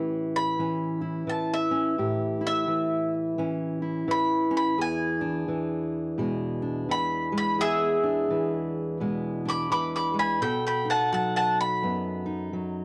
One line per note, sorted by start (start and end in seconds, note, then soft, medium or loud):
0.00 1.96 A2 medium
0.00 0.59 E3 medium
0.00 0.59 C#4 medium
0.00 1.01 E4 medium
0.00 1.97 G4 medium
0.36 1.26 B5 loud
0.59 1.27 E3 medium
0.59 1.70 C#4 medium
1.01 2.40 E4 medium
1.27 2.67 E3 medium
1.27 1.51 A5 medium
1.54 2.43 E5 medium
1.71 1.95 C#4 medium
1.98 4.75 A2 medium
1.98 4.76 G4 medium
2.41 3.82 E4 medium
2.47 3.14 E5 loud
2.68 3.38 E3 medium
3.38 4.08 E3 medium
3.38 4.49 C#4 medium
3.82 5.21 E4 medium
4.08 5.48 E3 medium
4.08 4.55 B5 loud
4.51 4.75 C#4 medium
4.57 4.79 B5 medium
4.78 7.57 E2 medium
4.78 7.56 G#4 medium
4.78 6.16 G#5 medium
5.21 6.61 D4 medium
5.48 6.88 E3 medium
6.18 6.89 B2 medium
6.18 7.31 G#3 medium
6.62 7.56 D4 medium
6.89 8.29 E3 medium
6.89 7.36 B5 loud
7.32 9.00 G#3 medium
7.38 7.60 B5 loud
7.59 10.41 E2 medium
7.59 10.38 G#4 medium
7.59 8.97 G#4 loud
7.59 8.97 E5 loud
8.03 9.44 D4 medium
8.30 9.70 E3 medium
9.00 9.71 B2 medium
9.00 10.13 G#3 medium
9.45 10.39 D4 medium
9.45 9.70 B5 medium
9.50 9.71 D6 medium
9.71 10.41 E3 medium
9.71 9.93 B5 medium
9.71 9.94 D6 medium
9.96 10.17 B5 medium
9.96 10.18 D6 medium
10.14 10.41 G#3 medium
10.19 10.40 G#5 medium
10.19 10.41 B5 medium
10.41 11.82 B2 medium
10.41 12.85 A4 medium
10.41 10.63 G5 medium
10.41 10.64 B5 medium
10.67 10.87 G5 medium
10.67 10.89 B5 medium
10.85 12.25 D#4 medium
10.90 11.11 F#5 medium
10.90 11.12 A5 medium
11.13 12.52 F#3 medium
11.13 11.34 F#5 medium
11.13 11.35 A5 medium
11.36 11.58 F#5 medium
11.36 11.59 A5 loud
11.61 12.85 B5 medium
11.82 12.85 F#2 medium
11.82 12.85 B3 medium
12.26 12.85 D#4 medium
12.53 12.85 F#3 medium